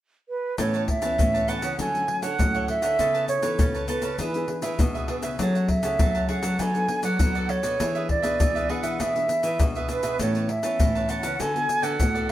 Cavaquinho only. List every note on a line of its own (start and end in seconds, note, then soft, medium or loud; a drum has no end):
0.58 0.72 A4 soft
0.58 0.73 B4 medium
0.58 0.72 C#5 soft
0.58 0.73 A5 soft
0.74 0.88 B4 soft
0.74 0.88 C#5 medium
0.74 0.87 A5 medium
0.88 muted cavaquinho stroke soft
1.02 1.17 B4 medium
1.02 1.17 C#5 soft
1.02 1.16 A5 medium
1.18 1.32 A4 soft
1.18 1.33 B4 soft
1.18 1.33 C#5 soft
1.18 1.33 A5 medium
1.34 1.47 B4 medium
1.34 1.47 C#5 medium
1.34 1.48 A5 medium
1.48 1.62 A4 medium
1.48 1.62 B4 medium
1.48 1.62 C#5 medium
1.48 1.61 A5 medium
1.62 1.77 B4 soft
1.62 1.77 C#5 medium
1.62 1.77 A5 medium
1.79 2.07 D4 soft
1.79 2.08 A4 medium
1.79 2.08 C#5 soft
1.79 2.08 F#5 soft
2.08 muted cavaquinho stroke soft
2.22 2.53 A4 soft
2.22 2.52 C#5 medium
2.22 2.52 F#5 medium
2.54 2.67 A4 medium
2.54 2.68 C#5 medium
2.54 2.68 F#5 medium
2.68 2.82 D4 soft
2.68 2.82 A4 soft
2.68 2.82 C#5 soft
2.68 2.81 F#5 soft
2.82 2.98 A4 soft
2.82 2.97 C#5 medium
2.82 2.97 F#5 medium
2.99 3.13 A4 soft
2.99 3.13 B4 soft
2.99 3.13 C#5 soft
2.99 3.13 A5 medium
3.14 3.27 B4 medium
3.14 3.27 C#5 soft
3.14 3.28 A5 medium
3.28 muted cavaquinho stroke soft
3.42 3.57 B4 medium
3.42 3.58 C#5 medium
3.42 3.57 A5 medium
3.59 3.73 A4 soft
3.59 3.73 B4 soft
3.59 3.73 C#5 medium
3.59 3.73 A5 soft
3.75 3.88 B4 medium
3.75 3.88 C#5 medium
3.75 3.88 A5 medium
3.88 4.02 A4 medium
3.88 4.02 B4 medium
3.88 4.02 C#5 medium
3.88 4.01 A5 medium
4.02 4.17 B4 medium
4.02 4.18 C#5 medium
4.02 4.17 A5 medium
4.19 4.47 D4 soft
4.19 4.48 G#4 soft
4.19 4.48 B4 soft
4.19 4.48 E5 soft
4.49 muted cavaquinho stroke soft
4.62 4.93 G#4 soft
4.62 4.93 B4 medium
4.62 4.92 E5 medium
4.94 5.08 G#4 medium
4.94 5.08 B4 medium
4.94 5.08 E5 medium
5.08 5.23 D4 soft
5.08 5.23 G#4 soft
5.08 5.22 B4 soft
5.08 5.22 E5 medium
5.23 5.38 G#4 soft
5.23 5.38 B4 medium
5.23 5.37 E5 medium
5.39 5.53 G#4 soft
5.39 5.53 C#5 medium
5.39 5.54 F#5 medium
5.39 5.53 A5 medium
5.55 5.68 C#5 soft
5.55 5.68 F#5 medium
5.55 5.68 A5 medium
5.69 muted cavaquinho stroke soft
5.83 5.98 C#5 medium
5.83 5.98 F#5 medium
5.83 5.98 A5 medium
5.99 6.13 G#4 soft
5.99 6.14 C#5 medium
5.99 6.14 F#5 soft
5.99 6.14 A5 medium
6.15 6.28 C#5 medium
6.15 6.28 F#5 medium
6.15 6.28 A5 medium
6.29 6.43 G#4 medium
6.29 6.43 C#5 medium
6.29 6.43 F#5 medium
6.29 6.42 A5 medium
6.43 6.58 C#5 soft
6.43 6.58 F#5 medium
6.43 6.58 A5 medium
6.59 6.88 D4 soft
6.59 6.88 A4 soft
6.59 6.88 B4 soft
6.59 6.89 D5 medium
6.89 muted cavaquinho stroke soft
7.03 7.34 A4 soft
7.03 7.33 B4 medium
7.03 7.33 D5 medium
7.35 7.49 A4 medium
7.35 7.49 B4 medium
7.35 7.49 D5 medium
7.49 7.63 D4 soft
7.49 7.63 A4 soft
7.49 7.63 B4 soft
7.49 7.62 D5 medium
7.63 7.78 A4 medium
7.63 7.78 B4 medium
7.63 7.78 D5 medium
7.79 7.93 D4 soft
7.79 7.94 G#4 soft
7.79 7.94 B4 medium
7.79 7.94 E5 medium
7.95 8.08 G#4 soft
7.95 8.08 B4 medium
7.95 8.09 E5 medium
8.09 muted cavaquinho stroke soft
8.22 8.38 G#4 medium
8.22 8.38 B4 soft
8.22 8.37 E5 medium
8.39 8.53 D4 soft
8.39 8.54 G#4 soft
8.39 8.54 B4 soft
8.39 8.54 E5 medium
8.55 8.68 G#4 medium
8.55 8.69 B4 medium
8.55 8.69 E5 medium
8.69 8.83 D4 medium
8.69 8.83 G#4 medium
8.69 8.83 B4 medium
8.69 8.82 E5 medium
8.83 8.99 G#4 medium
8.83 8.98 B4 medium
8.83 8.98 E5 medium
9.00 9.28 D4 soft
9.00 9.28 G#4 soft
9.00 9.29 B4 soft
9.00 9.29 E5 soft
9.29 muted cavaquinho stroke soft
9.44 9.74 G#4 soft
9.44 9.74 B4 medium
9.44 9.73 E5 medium
9.76 9.89 G#4 medium
9.76 9.89 B4 medium
9.76 9.89 E5 medium
9.90 10.03 D4 soft
9.90 10.03 G#4 soft
9.90 10.03 B4 soft
9.90 10.02 E5 medium
10.03 10.18 G#4 soft
10.03 10.18 B4 medium
10.03 10.18 E5 medium
10.20 10.33 A4 soft
10.20 10.34 B4 medium
10.20 10.34 C#5 medium
10.20 10.34 A5 medium
10.36 10.48 B4 medium
10.36 10.48 C#5 medium
10.36 10.49 A5 medium
10.49 muted cavaquinho stroke soft
10.63 10.78 B4 medium
10.63 10.78 C#5 medium
10.63 10.78 A5 medium
10.80 10.93 A4 soft
10.80 10.94 B4 soft
10.80 10.94 C#5 soft
10.80 10.94 A5 medium
10.95 11.09 B4 medium
10.95 11.08 C#5 soft
10.95 11.09 A5 medium
11.09 11.23 A4 medium
11.09 11.23 B4 medium
11.09 11.23 C#5 medium
11.09 11.22 A5 medium
11.23 11.38 B4 medium
11.23 11.38 C#5 soft
11.23 11.37 A5 medium
11.40 11.67 F#4 soft
11.40 11.68 A4 soft
11.40 11.68 B4 soft
11.40 11.68 D5 soft
11.68 muted cavaquinho stroke soft
11.82 12.13 A4 soft
11.82 12.13 B4 medium
11.82 12.12 D5 medium
12.15 12.28 A4 medium
12.15 12.29 B4 medium
12.15 12.28 D5 medium
12.29 12.32 F#4 soft